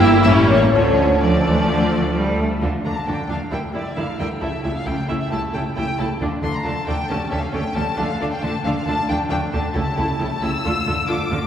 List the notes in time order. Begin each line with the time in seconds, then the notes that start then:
Already playing: G1 G2 A#3 E4
0.01 E4 E5
0.23 A1 A2 G3 C#4 E4 E5
0.48 A#3 C#4 C#5
0.72 D2 D3 F3 A3 C#4 C#5
1.20 F3 A3 D4 D5
1.44 E3
1.68 D3
1.92 F3
2.15 G3
2.39 A3
2.62 D2 D3 A3 D4 F4 A4
2.84 D2 D3 A3 D4 F4 A4 A#5
2.96 A5
3.07 D2 D3 A3 D4 F4 A4 G5
3.29 D2 D3 A3 D4 F4 A4 F5
3.51 D2 D3 G3 E4 A#4 G5
3.74 D2 D3 G3 E4 A#4 D5
3.87 E5
3.96 D2 D3 G3 E4 A#4 F5
4.18 D2 D3 G3 E4 A#4 G5
4.40 C#2 C#3 A3 E4 G4 A4 E5
4.62 C#2 C#3 A3 E4 G4 A4 E5
4.75 F5
4.85 C#2 C#3 A3 E4 G4 A4 G5
5.07 C#2 C#3 A3 E4 G4 A4 E5
5.20 E5
5.29 C#2 C#3 A3 E4 G4 A4 A5
5.52 C#2 C#3 A3 E4 G4 A4 G5
5.75 C#2 C#3 A3 E4 G4 A4 G5
5.98 C#2 C#3 A3 E4 G4 A4 A5
6.21 D2 D3 A3 D4 F4 A4
6.42 D2 D3 A3 D4 F4 A4 C6
6.54 A#5
6.64 D2 D3 A3 D4 F4 A4 A5
6.87 D2 D3 A3 D4 F4 A4 G5
7.09 D2 D3 A3 C#4 G4 A4 A5
7.31 D2 D3 A3 C#4 G4 A4 E5
7.41 F5
7.52 D2 D3 A3 C#4 G4 A4 G5
7.75 D2 D3 A3 C#4 G4 A4 A5
7.97 D2 D3 A3 D4 F4 A4 F5
8.20 D2 D3 A3 D4 F4 A4 F5
8.31 G5
8.41 D2 D3 A3 D4 F4 A4 A5
8.65 D2 D3 A3 D4 F4 A4 F5
8.75 F5
8.86 D2 D3 A3 D4 F4 A4 A5
9.08 D2 D3 A3 D4 F4 A4 G5
9.28 D2 D3 A3 D4 F4 A4 G5
9.51 D2 D3 A3 D4 F4 A4 A5
9.73 C#2 C#3 A3 E4 G4 A4 A5
9.96 C#2 C#3 A3 E4 G4 A4
10.19 C#2 C#3 A3 E4 G4 A4
10.41 C#2 C#3 A3 E4 G4 A4 E6
10.65 D2 D3 A3 F4 A4
10.86 D2 D3 A3 F4 A4
11.08 D2 D3 A3 F4 A4 D6
11.30 D2 D3 A3 F4 A4